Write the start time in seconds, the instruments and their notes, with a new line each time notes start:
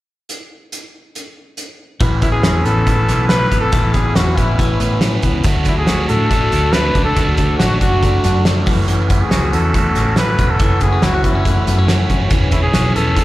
0.29 closed hi-hat
0.72 closed hi-hat
1.15 closed hi-hat
1.57 closed hi-hat
2.00 fretless electric bass A1, clean electric guitar E3, overdriven electric guitar A3 C#4 E4 B4, kick, closed hi-hat
2.22 clean electric guitar B3, overdriven electric guitar C#4 E4 B4, trumpet E4, kick, closed hi-hat
2.32 trumpet G#4
2.43 fretless electric bass E2, overdriven electric guitar A3 C#4 E4 B4, snare, closed hi-hat
2.64 fretless electric bass A1, clean electric guitar B3, overdriven electric guitar C#4 E4 B4, trumpet A4, closed hi-hat
2.86 fretless electric bass A2, clean electric guitar E3, overdriven electric guitar A3 C#4 E4 B4, kick, closed hi-hat
3.08 fretless electric bass B1, clean electric guitar B3, overdriven electric guitar C#4 B4, snare, closed hi-hat
3.12 overdriven electric guitar E4
3.28 clean electric guitar E3, overdriven electric guitar A3 C#4 E4, trumpet B4, snare, closed hi-hat
3.32 overdriven electric guitar B4
3.51 fretless electric bass G#1, clean electric guitar B3, overdriven electric guitar C#4 E4 B4, kick, closed hi-hat
3.61 trumpet A4
3.72 fretless electric bass A1, clean electric guitar E3, overdriven electric guitar A3 C#4 E4 B4, kick, closed hi-hat
3.93 clean electric guitar B3, overdriven electric guitar C#4 E4 B4, trumpet G#4, kick, closed hi-hat
4.16 fretless electric bass E2, overdriven electric guitar A3 C#4 E4 B4, trumpet F#4, snare, closed hi-hat
4.36 fretless electric bass A1, clean electric guitar B3, overdriven electric guitar C#4 B4, trumpet E4, kick, closed hi-hat
4.41 overdriven electric guitar E4
4.59 clean electric guitar E3, overdriven electric guitar A3 C#4 E4, kick, closed hi-hat
4.63 overdriven electric guitar B4
4.80 fretless electric bass A2, clean electric guitar B3, overdriven electric guitar C#4 E4 B4, closed hi-hat
5.01 clean electric guitar E3, overdriven electric guitar A3 C#4 E4 B4, snare, closed hi-hat
5.22 fretless electric bass C#2, clean electric guitar B3, overdriven electric guitar C#4 E4 B4, kick, closed hi-hat
5.44 fretless electric bass D2, overdriven electric guitar D3 F#3 A3 D4 F#4, kick, closed hi-hat
5.65 overdriven electric guitar D4 F#4, trumpet E4, kick, closed hi-hat
5.70 overdriven electric guitar A3
5.77 trumpet G#4
5.87 overdriven electric guitar D3 F#3 A3 D4 F#4, snare, closed hi-hat
6.08 fretless electric bass A2, overdriven electric guitar A3 D4 F#4, trumpet A4, closed hi-hat
6.29 overdriven electric guitar F#3 A3 D4 F#4, kick, closed hi-hat
6.51 fretless electric bass D2, overdriven electric guitar A3 D4 F#4, closed hi-hat
6.73 overdriven electric guitar D3 F#3 A3 D4 F#4, trumpet B4, snare, closed hi-hat
6.94 fretless electric bass C#2, overdriven electric guitar A3 D4 F#4, kick, closed hi-hat
7.04 trumpet A4
7.15 fretless electric bass D2, overdriven electric guitar D3 F#3 A3 D4 F#4, kick, closed hi-hat
7.37 overdriven electric guitar A3 D4 F#4, trumpet A4, kick, closed hi-hat
7.58 fretless electric bass A1, overdriven electric guitar D3 F#3 A3 D4 F#4, trumpet F#4, snare, closed hi-hat
7.80 fretless electric bass F#1, overdriven electric guitar A3 D4 F#4, trumpet F#4, kick, closed hi-hat
8.03 overdriven electric guitar F#3 A3 D4 F#4, kick, closed hi-hat
8.23 fretless electric bass F#2, overdriven electric guitar D4 F#4, snare, closed hi-hat
8.28 overdriven electric guitar A3
8.45 overdriven electric guitar D3 F#3 A3 D4 F#4, snare, closed hi-hat
8.66 fretless electric bass F#1, overdriven electric guitar A3 C#4 F#4, kick, open hi-hat
8.70 overdriven electric guitar E3
8.88 overdriven electric guitar F#2 C#3 E3 A3 C#4 F#4, closed hi-hat
9.08 overdriven electric guitar E3 A3 C#4 F#4, trumpet E4, kick, closed hi-hat
9.21 trumpet G#4
9.31 fretless electric bass C#2, overdriven electric guitar F#2 C#3 E3 A3 C#4 F#4, snare, closed hi-hat
9.52 fretless electric bass E2, overdriven electric guitar E3 A3 C#4 F#4, trumpet A4, closed hi-hat
9.74 overdriven electric guitar E3 A3 C#4 F#4, kick, closed hi-hat
9.95 fretless electric bass A1, overdriven electric guitar E3 A3 C#4 F#4, snare, closed hi-hat
10.16 overdriven electric guitar F#2 C#3 E3 A3 C#4 F#4, trumpet B4, snare, closed hi-hat
10.38 fretless electric bass E1, overdriven electric guitar E3 A3 C#4 F#4, kick, closed hi-hat
10.51 trumpet A4
10.59 fretless electric bass F#1, overdriven electric guitar F#2 C#3 E3 A3 C#4 F#4, kick, closed hi-hat
10.81 overdriven electric guitar E3 A3 C#4 F#4, clean electric guitar B3, trumpet G#4, kick, closed hi-hat
10.92 clean electric guitar C#4
11.02 fretless electric bass C#2, overdriven electric guitar F#2 C#3 E3 A3 C#4 F#4, clean electric guitar E4, trumpet F#4, snare, closed hi-hat
11.14 clean electric guitar F#4
11.23 fretless electric bass F#1, overdriven electric guitar E3 A3 C#4 F#4, clean electric guitar B3, trumpet E4, kick, closed hi-hat
11.35 clean electric guitar C#4
11.45 overdriven electric guitar E3 A3 C#4 F#4, kick, closed hi-hat
11.66 fretless electric bass F#2, overdriven electric guitar E3 A3 C#4 F#4, clean electric guitar B3, closed hi-hat
11.78 clean electric guitar C#4
11.87 overdriven electric guitar F#2 C#3 E3 A3 C#4 F#4, snare, closed hi-hat
12.08 fretless electric bass F#1, overdriven electric guitar E3 A3 C#4 F#4, kick, closed hi-hat
12.29 fretless electric bass E1, overdriven electric guitar E3 B3 C#4 G#4, kick, closed hi-hat
12.50 overdriven electric guitar B3 C#4 G#4, trumpet E4, kick, closed hi-hat
12.63 trumpet G#4
12.72 fretless electric bass B1, overdriven electric guitar E3 B3 C#4 G#4, clean electric guitar F#4, snare, closed hi-hat
12.94 fretless electric bass E1, overdriven electric guitar B3 C#4 G#4, trumpet A4, closed hi-hat
13.15 overdriven electric guitar E3 B3 C#4 G#4, kick, closed hi-hat